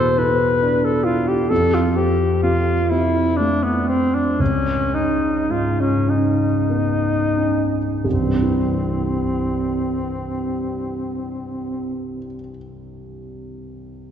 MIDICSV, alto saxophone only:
0, 0, Header, 1, 2, 480
1, 0, Start_track
1, 0, Key_signature, 0, "major"
1, 0, Tempo, 886263
1, 816, Time_signature, 6, 3, 24, 8
1, 816, Tempo, 944882
1, 1776, Tempo, 1005025
1, 2256, Tempo, 1100917
1, 2736, Tempo, 1192843
1, 3216, Tempo, 1351351
1, 3696, Tempo, 1268499
1, 5992, End_track
2, 0, Start_track
2, 0, Title_t, "Alto saxophone"
2, 0, Program_c, 0, 65
2, 0, Note_on_c, 0, 72, 61
2, 97, Note_on_c, 0, 71, 66
2, 105, Note_off_c, 0, 72, 0
2, 458, Note_on_c, 0, 69, 59
2, 466, Note_off_c, 0, 71, 0
2, 563, Note_on_c, 0, 65, 57
2, 571, Note_off_c, 0, 69, 0
2, 691, Note_on_c, 0, 67, 61
2, 699, Note_off_c, 0, 65, 0
2, 810, Note_on_c, 0, 69, 72
2, 818, Note_off_c, 0, 67, 0
2, 936, Note_on_c, 0, 65, 59
2, 944, Note_off_c, 0, 69, 0
2, 1045, Note_on_c, 0, 67, 58
2, 1052, Note_off_c, 0, 65, 0
2, 1281, Note_off_c, 0, 67, 0
2, 1284, Note_on_c, 0, 65, 62
2, 1524, Note_on_c, 0, 64, 58
2, 1531, Note_off_c, 0, 65, 0
2, 1761, Note_on_c, 0, 62, 55
2, 1769, Note_off_c, 0, 64, 0
2, 1890, Note_on_c, 0, 59, 51
2, 1897, Note_off_c, 0, 62, 0
2, 2006, Note_on_c, 0, 60, 55
2, 2013, Note_off_c, 0, 59, 0
2, 2134, Note_on_c, 0, 62, 52
2, 2141, Note_off_c, 0, 60, 0
2, 2256, Note_on_c, 0, 61, 61
2, 2262, Note_off_c, 0, 62, 0
2, 2491, Note_on_c, 0, 63, 52
2, 2498, Note_off_c, 0, 61, 0
2, 2739, Note_on_c, 0, 65, 56
2, 2745, Note_off_c, 0, 63, 0
2, 2857, Note_on_c, 0, 61, 49
2, 2863, Note_off_c, 0, 65, 0
2, 2974, Note_on_c, 0, 63, 49
2, 2980, Note_off_c, 0, 61, 0
2, 3625, Note_off_c, 0, 63, 0
2, 3685, Note_on_c, 0, 60, 47
2, 5248, Note_off_c, 0, 60, 0
2, 5992, End_track
0, 0, End_of_file